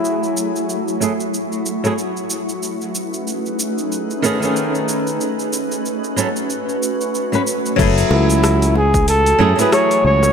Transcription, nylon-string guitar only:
X:1
M:4/4
L:1/16
Q:"Swing 16ths" 1/4=93
K:F#dor
V:1 name="Nylon-string guitar"
[F,A,EG]6 [F,A,EG] z4 [F,A,EG] z4 | z8 z2 [D,A,B,CG] [D,A,B,CG]4- [D,A,B,CG] | z6 [F,B,CA] z6 [F,B,CB] z2 | [F,A,EG]6 z4 [F,A,EG] [F,A,EG]4- [F,A,EG] |]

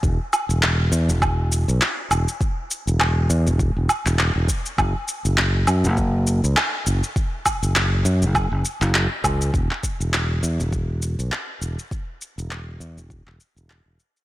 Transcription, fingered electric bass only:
X:1
M:4/4
L:1/16
Q:"Swing 16ths" 1/4=101
K:F#dor
V:1 name="Fingered electric bass" clef=bass
E,,, z2 E,,,3 E,, E,,,4 B,,, z2 E,,, z | z3 E,,,3 E,, E,,,2 E,,, z E,,,2 E,,, z2 | F,,, z2 F,,,3 F,, F,,,4 C,, z2 F,,, z | z3 F,,,3 F,, F,,,2 F,,, z F,,,2 z C,,2 |
E,,, z2 E,,,3 E,, E,,,4 B,,, z2 E,,, z | z3 E,,,3 E,, E,,,2 E,,, z E,,,2 E,,, z2 |]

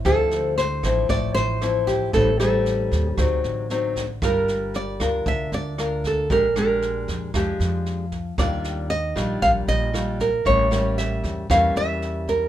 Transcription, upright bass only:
X:1
M:4/4
L:1/8
Q:1/4=115
K:Dm
V:1 name="Upright bass" clef=bass
D,,3 A,,, A,,, A,,,3 | A,,,3 _E,, D,, A,,,3 | G,,,3 D,, D,, D,,3 | B,,,3 F,, F,, F,,3 |
_E,,3 B,,, B,,, B,,,3 | A,,,3 E,, E,, E,,3 |]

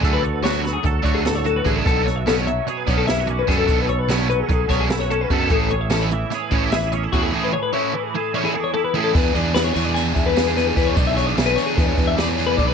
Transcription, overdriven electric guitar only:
X:1
M:9/8
L:1/8
Q:3/8=99
K:Emix
V:1 name="Overdriven electric guitar"
[D,F,A,D] z [D,F,A,D] z2 [D,F,A,D] z2 [D,F,A,D] | [B,,F,B,D] z [B,,F,B,D] z2 [B,,F,B,D] z2 [B,,F,B,D] | [B,,F,B,D] z [B,,F,B,D] z2 [B,,F,B,D] z2 [B,,F,B,D] | [E,A,CE] z [E,A,CE] z2 [E,A,CE] z2 [E,A,CE] |
[E,A,CE] z [E,A,CE] z2 [E,A,CE] z2 [E,A,CE] | [E,B,DG] [B,DG] [E,B,DG] [B,DG]3 [E,B,DG] [B,DG] [E,B,DG] | [E,B,DG] [B,DG] [E,B,DG] [B,DG]3 [E,B,DG] [B,DG] [E,B,DG] |]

